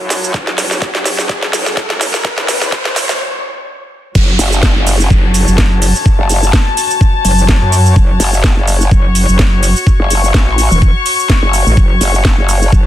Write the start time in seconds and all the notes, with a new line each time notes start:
Already playing: F#4 C#5 A5, riser
0.00 F#2
0.10 snare, open hi-hat, shaker
0.24 shaker
0.34 F#1, kick, snare, shaker
0.47 snare
0.58 F#1, snare, open hi-hat, shaker
0.71 snare, shaker
0.82 kick, snare, shaker
0.95 F#1, snare
1.06 snare, open hi-hat, shaker
1.19 snare, shaker
1.29 F#1, kick, snare, shaker
1.43 snare
1.53 snare, open hi-hat, shaker
1.66 F#1, snare, shaker
1.77 kick, snare, shaker
1.90 snare
2.01 snare, open hi-hat, shaker
2.14 snare, shaker
2.25 kick, snare, shaker
2.38 F#1, snare
2.48 snare, open hi-hat, shaker
2.62 snare, shaker
2.72 kick, snare, shaker
2.85 snare
2.96 snare, open hi-hat, shaker
3.09 snare, shaker
4.15 F#1 F#4, kick, crash, downlifter, shaker
4.39 F#1, open hi-hat, shaker
4.53 shaker
4.63 kick, snare, shaker
4.76 F#1 C#5
4.87 open hi-hat, shaker
5.00 shaker
5.10 F#1 A5, kick, shaker
5.34 open hi-hat, shaker
5.47 F#1, shaker
5.58 kick, snare, shaker
5.82 open hi-hat, shaker
5.95 shaker
6.06 kick, shaker
6.19 F#1
6.29 open hi-hat, shaker
6.43 shaker
6.53 kick, snare, shaker
6.77 open hi-hat, shaker
6.91 shaker
7.01 kick, shaker
7.25 F#1, open hi-hat, shaker
7.38 shaker
7.49 kick, snare, shaker
7.62 F#2
7.72 open hi-hat, shaker
7.86 shaker
7.96 F#1, kick, shaker
8.20 F#1, open hi-hat, shaker
8.34 shaker
8.44 kick, snare, shaker
8.57 F#1
8.68 open hi-hat, shaker
8.81 shaker
8.91 F#1 C#6, kick, shaker
9.15 open hi-hat, shaker
9.28 F#1, shaker
9.39 kick, snare, shaker
9.63 open hi-hat, shaker
9.76 shaker
9.87 kick, shaker
10.00 F#1
10.10 open hi-hat, shaker
10.24 shaker
10.34 A1, kick, snare, shaker
10.58 open hi-hat, shaker
10.71 E1, shaker
10.82 kick, shaker
11.06 open hi-hat, shaker
11.19 shaker
11.30 kick, snare, shaker
11.43 F#1
11.53 open hi-hat, shaker
11.66 A1, shaker
11.77 F#1, kick, shaker
12.01 F#1, open hi-hat, shaker
12.15 shaker
12.25 kick, snare, shaker
12.38 F#1
12.49 open hi-hat, shaker
12.62 shaker
12.72 F#1 A5, kick, shaker